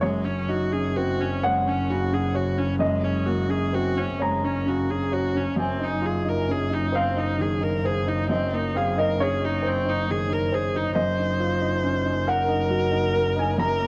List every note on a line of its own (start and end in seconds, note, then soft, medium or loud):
0.01 5.56 F#1 medium
0.01 2.77 F#2 medium
0.01 0.26 G#3 medium
0.01 1.39 C#5 medium
0.25 0.51 C#4 soft
0.25 0.63 C#4 soft
0.48 0.72 D#4 soft
0.48 0.74 F#4 medium
0.72 1.11 C#4 soft
0.72 0.98 G#4 medium
0.96 1.20 C4 soft
0.96 1.23 F#4 medium
1.20 1.58 C#4 soft
1.20 1.46 C#4 medium
1.43 1.69 G#3 soft
1.43 1.81 C#5 medium
1.43 2.76 F#5 medium
1.66 2.03 C#4 soft
1.66 1.92 C#4 soft
1.90 2.26 C#3 soft
1.90 2.15 F#4 medium
2.12 2.49 C#4 soft
2.12 2.37 G#4 soft
2.34 2.60 F#4 soft
2.34 2.71 C#5 soft
2.58 2.94 C#4 soft
2.58 2.79 C#4 soft
2.79 5.55 F#2 medium
2.79 3.05 G#3 medium
2.79 4.17 D#5 medium
3.03 3.40 G#3 soft
3.03 3.27 C#4 soft
3.26 3.50 A#3 soft
3.26 3.52 F#4 soft
3.48 3.87 C#4 soft
3.48 3.76 G#4 medium
3.73 3.97 C4 soft
3.73 3.99 F#4 medium
3.96 4.35 C#4 soft
3.96 4.23 C#4 medium
4.19 4.46 G#3 medium
4.19 4.58 C#5 medium
4.19 5.56 A#5 medium
4.44 4.81 C#4 soft
4.44 4.69 C#4 soft
4.66 5.04 C#3 soft
4.66 4.92 F#4 soft
4.90 5.27 C#4 soft
4.90 5.15 G#4 medium
5.12 5.39 F#4 medium
5.12 5.49 C#5 soft
5.35 5.58 C#4 soft
5.35 5.59 C#4 medium
5.56 10.92 F#1 medium
5.56 8.24 F#2 medium
5.56 5.85 C4 medium
5.56 6.91 G#5 medium
5.80 6.17 D#4 soft
5.80 6.07 D#4 medium
6.02 6.26 F4 soft
6.02 6.30 G#4 soft
6.24 6.62 D#4 soft
6.29 6.53 A#4 soft
6.49 6.72 C#4 soft
6.49 6.75 G#4 medium
6.70 7.07 D#4 soft
6.74 6.97 D#4 soft
6.92 7.20 C4 medium
6.92 7.30 C5 soft
6.92 8.26 F5 medium
7.16 7.53 D#4 soft
7.16 7.42 D#4 soft
7.38 7.75 D#3 soft
7.38 7.64 G#4 soft
7.61 7.97 D#4 soft
7.61 7.87 A#4 soft
7.85 8.10 G#4 medium
7.85 8.21 C5 soft
8.07 8.43 D#4 soft
8.07 8.29 D#4 medium
8.29 10.92 F#2 medium
8.29 8.55 C4 medium
8.29 8.72 D#5 medium
8.52 8.88 A#3 soft
8.52 8.79 D#4 medium
8.75 8.97 C4 soft
8.75 9.01 G#4 soft
8.75 8.96 F5 medium
8.96 9.33 D#4 soft
8.96 9.24 A#4 medium
8.96 9.19 D#5 medium
9.18 9.41 C#4 soft
9.18 9.61 C#5 medium
9.23 9.46 G#4 medium
9.41 9.77 D#4 soft
9.41 9.69 D#4 medium
9.62 9.98 C5 medium
9.67 9.91 C4 medium
9.85 10.21 D#4 soft
9.89 10.12 D#4 medium
10.08 10.43 D#3 soft
10.08 10.35 G#4 medium
10.29 10.64 D#4 soft
10.33 10.56 A#4 soft
10.52 10.78 G#4 medium
10.52 10.87 C5 soft
10.75 10.96 D#4 soft
10.75 10.97 D#4 soft
10.95 13.87 F#1 medium
10.95 13.55 F#2 medium
10.95 12.30 C5 medium
10.95 12.23 D#5 medium
11.19 11.53 D#4 soft
11.40 11.62 F4 soft
11.61 11.97 D#4 medium
11.84 12.06 C#4 soft
12.04 12.40 D#4 soft
12.27 12.62 A#4 medium
12.27 13.59 A#4 medium
12.27 13.33 F#5 medium
12.48 12.84 D#4 soft
12.70 13.06 F#3 soft
12.91 13.27 D#4 soft
13.13 13.49 A#4 medium
13.36 13.72 D#4 soft
13.36 13.59 G#5 medium
13.58 13.87 F#2 medium
13.58 13.87 A#4 medium
13.58 13.87 A#5 medium
13.80 13.87 A#3 soft